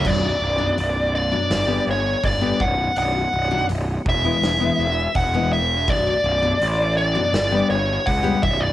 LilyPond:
<<
  \new Staff \with { instrumentName = "Lead electric guitar" } { \time 4/4 \key b \minor \tempo 4 = 82 d''4. d''4 cis''8 d''8 fis''8 | fis''4 r8 e''4. fis''8 e''8 | d''4. d''4 cis''8 fis''8 e''16 d''16 | }
  \new Staff \with { instrumentName = "Steel-string acoustic guitar" } { \clef bass \time 4/4 \key b \minor <fis, b, fis d'>16 r8 <fis, b, fis d'>16 r8. <fis, b, fis d'>16 r16 <g b d' g'>16 r8. <g b d' g'>16 r8 | <fis, b, fis d'>16 r8 <fis, b, fis d'>16 r8. <e gis b e'>16 r16 <e gis b e'>16 r8. <e gis b e'>16 r8 | <fis, b, fis d'>16 r8 <fis, b, fis d'>16 r8. <fis, b, fis d'>16 r16 <g b d' g'>16 r8. <g b d' g'>16 r8 | }
  \new Staff \with { instrumentName = "Picked electric bass" } { \clef bass \time 4/4 \key b \minor b,,,8 b,,,8 b,,,4 g,,8 g,,8 g,,8 b,,,8 | b,,,8 b,,,8 b,,,8 e,,8 e,,8 e,,8 e,,4 | b,,,8 b,,,8 a,,4 g,,8 g,,8 cis,8 b,,,8 | }
  \new DrumStaff \with { instrumentName = "Drums" } \drummode { \time 4/4 <cymc bd>4 hho4 <hho sn>4 <hho bd>8 bd8 | hho4 hho8 bd8 <hho sn>4 <hho bd>4 | <hho bd>4 hho4 <hho sn>4 <hho bd>8 bd8 | }
>>